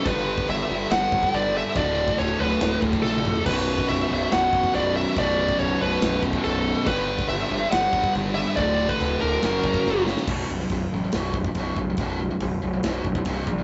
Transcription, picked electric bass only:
X:1
M:4/4
L:1/8
Q:1/4=141
K:Bm
V:1 name="Picked electric bass" clef=bass
G,,,2 G,,, G,,, G,,, G,,, G,,,2 | D,,,2 D,,, D,,, D,,, D,,, ^A,,,2 | B,,,,2 B,,,, B,,,, B,,,, B,,,, B,,,,2 | B,,,,2 B,,,, B,,,, B,,,, B,,,, B,,,,2 |
G,,,2 G,,, G,,, G,,, G,,, G,,,2 | D,,,2 D,,, D,,, F,,, F,,, F,,,2 | B,,,, B,,,, B,,,, A,,, B,,,,2 B,,,, B,,,, | B,,,,2 B,,,, B,,,, B,,,, B,,,, =C,,, ^A,,, |]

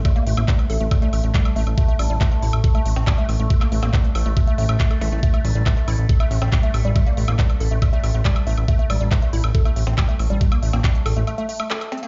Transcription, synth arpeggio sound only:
X:1
M:4/4
L:1/16
Q:1/4=139
K:Aphr
V:1 name="Synth arpeggio sound"
A, B, A, B, G, z A A, A, A, A, A, G, z A, z | A, A, G, G, A, A, E z A A, A, z G, A, z A, | A, B, A, B, G, z A A, A, A, A, A, A, A A, z | A, A, G, G, A, A, E z A A, A, z G, A, z G, |
A, B, A, B, G, z A A, A, A, A, A, G, z A, z | A, A, G, G, A, A, E z A A, A, z G, A, z G, | A, B, A, B, G, z A A, A, A, A, A, A z C B, |]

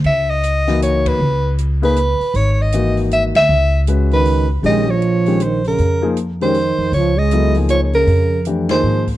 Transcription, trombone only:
X:1
M:3/4
L:1/8
Q:"Swing" 1/4=157
K:Dblyd
V:1 name="Trombone" clef=bass
z6 | z6 | z6 | z3 E,2 z |
A, F,3 E, D,- | D,2 z E,3 | F, A,2 z F, D,- | D,2 z E,2 z |]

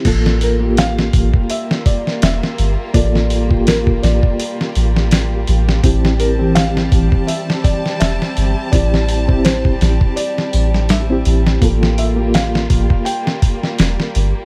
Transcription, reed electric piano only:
X:1
M:4/4
L:1/16
Q:"Swing 16ths" 1/4=83
K:Gdor
V:1 name="Reed electric piano"
[B,FA]3 [B,FG]12- [B,FG] | [B,FA]3 [B,FG]12- [B,FG] | [CEG]3 [E,CG]12- [E,CG] | [CEG]3 [CEG]8- [CEG]2 [CEG]3 |
[B,FA]3 [B,FG]12- [B,FG] |]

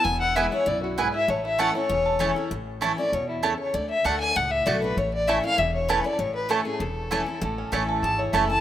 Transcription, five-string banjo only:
X:1
M:4/4
L:1/8
Q:1/4=195
K:A
V:1 name="Five-string banjo"
[B,E] E B, E E E E E | A, E A E C A E C | z8 | z8 |
z8 | z8 | A, C E A A, E A E |]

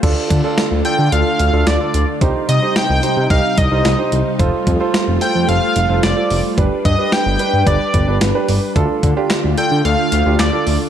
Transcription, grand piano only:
X:1
M:4/4
L:1/16
Q:1/4=110
K:Dphr
V:1 name="Grand piano"
[DFA]3 [DFA]3 [DFA]2 [DFA]3 [DFA]2 [DFA]3 | [EGc]3 [EGc]3 [EGc]2 [EGe]3 [EGc]2 [EGc]3 | [FAc]3 [FAc]3 [FAc]2 [FAc]3 [FAc]2 [FAc]3 | [DG=B]3 [DGB]3 [DGB]2 [DGB]3 [DGB]2 [DGB]3 |
[DFA]3 [DFG]3 [DFA]2 [DFA]3 [DFG]2 [DFA]3 |]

